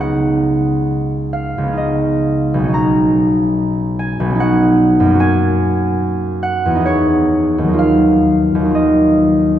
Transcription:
0.00 1.57 C#2 soft
0.00 1.61 B3 soft
0.00 1.67 C#4 soft
0.00 1.71 D#4 soft
0.00 1.11 F#4 soft
0.00 1.16 D#5 medium
0.00 3.91 F#5 medium
1.33 2.10 F5 medium
1.58 2.68 C#2 soft
1.63 2.58 B3 soft
1.68 2.63 C#4 soft
1.73 2.67 D#4 soft
1.77 5.23 D#5 medium
2.54 4.19 B1 medium
2.59 4.24 B3 soft
2.64 4.29 C#4 soft
2.68 4.34 D#4 soft
2.74 6.64 A#5 medium
3.99 4.67 G#5 medium
4.20 5.13 B1 medium
4.25 5.15 B3 soft
4.30 5.09 C#4 soft
4.35 5.20 D#4 medium
4.40 6.42 F#5 medium
5.00 6.79 F#2 medium
5.05 6.82 A#3 soft
5.10 6.84 C#4 soft
5.15 6.87 F#4 soft
5.20 7.82 G#5 loud
6.43 6.89 F#5 medium
6.66 7.72 E2 medium
6.70 7.74 B3 soft
6.75 7.67 D#4 soft
6.80 7.79 G#4 soft
6.86 8.46 C#5 medium
7.58 8.54 D#2 soft
7.64 8.58 F#3 soft
7.68 8.63 D#4 soft
7.73 8.68 F4 soft
7.79 9.40 F5 medium
8.55 9.59 D#2 soft
8.59 9.59 F#3 soft
8.65 9.59 D#4 soft
8.69 9.59 F4 soft
8.75 9.59 D#5 medium

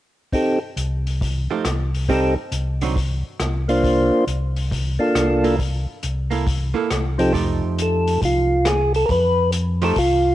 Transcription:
0.33 0.59 C4 soft
0.33 0.59 D#4 soft
0.33 0.59 G4 soft
0.33 0.59 A4 medium
0.33 kick soft
0.33 open hi-hat soft
0.76 1.48 C2 medium
0.76 closed hi-hat soft
1.07 open hi-hat soft
1.21 kick soft
1.21 open hi-hat soft
1.50 1.63 F3 soft
1.50 1.63 A3 medium
1.50 1.64 D#4 medium
1.50 1.64 G4 medium
1.65 2.36 C2 medium
1.65 cross-stick medium
1.65 closed hi-hat soft
1.94 open hi-hat soft
2.08 2.35 G3 soft
2.08 2.34 C4 medium
2.08 2.35 C4 medium
2.08 2.35 D#4 soft
2.08 2.35 D#4 medium
2.08 2.35 G4 soft
2.08 2.35 A4 medium
2.08 kick soft
2.08 open hi-hat soft
2.51 3.23 C2 medium
2.51 closed hi-hat soft
2.81 2.95 D3 soft
2.81 2.95 F#3 soft
2.81 2.95 C4 soft
2.81 2.96 D#4 medium
2.81 open hi-hat soft
2.96 kick soft
2.96 open hi-hat soft
3.40 4.11 C2 medium
3.40 cross-stick medium
3.40 closed hi-hat soft
3.68 4.24 A#3 soft
3.68 4.25 D4 medium
3.68 4.25 F4 soft
3.68 4.25 C5 medium
3.68 open hi-hat soft
3.84 kick soft
3.84 open hi-hat soft
4.27 4.99 C2 medium
4.27 closed hi-hat soft
4.56 open hi-hat soft
4.71 kick soft
4.71 open hi-hat soft
4.99 5.56 A#3 medium
4.99 5.56 D4 soft
4.99 5.56 F4 soft
4.99 5.56 A4 medium
5.15 5.87 C2 medium
5.15 cross-stick medium
5.15 closed hi-hat medium
5.44 5.58 A#3 medium
5.44 5.58 E4 medium
5.44 5.58 A4 medium
5.44 open hi-hat soft
5.59 kick soft
5.59 open hi-hat soft
6.03 6.75 C2 medium
6.03 closed hi-hat soft
6.31 6.45 A#3 medium
6.31 6.45 E4 soft
6.31 6.45 A4 soft
6.31 open hi-hat soft
6.47 kick soft
6.47 open hi-hat soft
6.74 6.88 A#3 medium
6.74 6.89 E4 medium
6.74 6.89 A4 medium
6.91 7.62 C2 medium
6.91 cross-stick medium
6.91 closed hi-hat soft
7.18 7.32 F3 medium
7.18 7.33 C4 medium
7.18 7.33 D#4 medium
7.18 7.33 G4 medium
7.18 7.33 A4 medium
7.18 open hi-hat soft
7.33 8.18 F2 medium
7.33 8.56 F3 medium
7.33 8.56 A3 medium
7.33 8.56 D#4 medium
7.33 8.56 G4 medium
7.33 kick soft
7.33 open hi-hat soft
7.79 8.21 A4 medium
7.79 closed hi-hat soft
8.07 open hi-hat soft
8.22 9.05 C2 medium
8.22 8.68 F4 medium
8.22 kick soft
8.22 open hi-hat soft
8.65 8.93 G#4 medium
8.65 cross-stick medium
8.65 closed hi-hat medium
8.94 9.06 A4 medium
8.94 open hi-hat soft
9.06 9.93 F2 medium
9.06 9.10 A#4 medium
9.06 kick soft
9.06 open hi-hat soft
9.11 9.51 B4 medium
9.52 closed hi-hat soft
9.82 9.95 F3 medium
9.82 9.95 A3 medium
9.82 9.96 D#4 medium
9.82 9.96 G4 medium
9.82 9.98 A4 medium
9.82 open hi-hat soft
9.96 10.35 C2 medium
9.96 10.35 F4 loud
9.96 kick soft
9.96 open hi-hat soft

